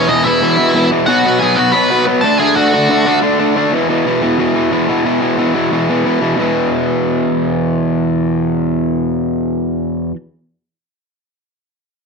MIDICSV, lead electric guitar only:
0, 0, Header, 1, 2, 480
1, 0, Start_track
1, 0, Tempo, 331858
1, 1571, Time_signature, 4, 2, 24, 8
1, 17436, End_track
2, 0, Start_track
2, 0, Title_t, "Lead electric guitar"
2, 0, Program_c, 0, 29
2, 119, Note_on_c, 0, 75, 105
2, 155, Note_on_c, 0, 63, 78
2, 346, Note_off_c, 0, 75, 0
2, 351, Note_on_c, 0, 76, 102
2, 370, Note_off_c, 0, 63, 0
2, 393, Note_on_c, 0, 64, 79
2, 1261, Note_off_c, 0, 76, 0
2, 1282, Note_off_c, 0, 64, 0
2, 1536, Note_on_c, 0, 78, 120
2, 1578, Note_on_c, 0, 66, 89
2, 1995, Note_off_c, 0, 78, 0
2, 2014, Note_on_c, 0, 80, 115
2, 2018, Note_off_c, 0, 66, 0
2, 2053, Note_on_c, 0, 68, 94
2, 2252, Note_on_c, 0, 78, 109
2, 2272, Note_off_c, 0, 68, 0
2, 2277, Note_off_c, 0, 80, 0
2, 2297, Note_on_c, 0, 66, 83
2, 2488, Note_on_c, 0, 83, 116
2, 2514, Note_off_c, 0, 66, 0
2, 2515, Note_off_c, 0, 78, 0
2, 2527, Note_on_c, 0, 71, 85
2, 2948, Note_off_c, 0, 83, 0
2, 2969, Note_off_c, 0, 71, 0
2, 3198, Note_on_c, 0, 81, 105
2, 3239, Note_on_c, 0, 69, 78
2, 3439, Note_off_c, 0, 81, 0
2, 3439, Note_on_c, 0, 80, 122
2, 3459, Note_off_c, 0, 69, 0
2, 3464, Note_on_c, 0, 68, 96
2, 3692, Note_on_c, 0, 78, 88
2, 3693, Note_off_c, 0, 68, 0
2, 3705, Note_off_c, 0, 80, 0
2, 3710, Note_on_c, 0, 66, 73
2, 4602, Note_off_c, 0, 78, 0
2, 4610, Note_off_c, 0, 66, 0
2, 17436, End_track
0, 0, End_of_file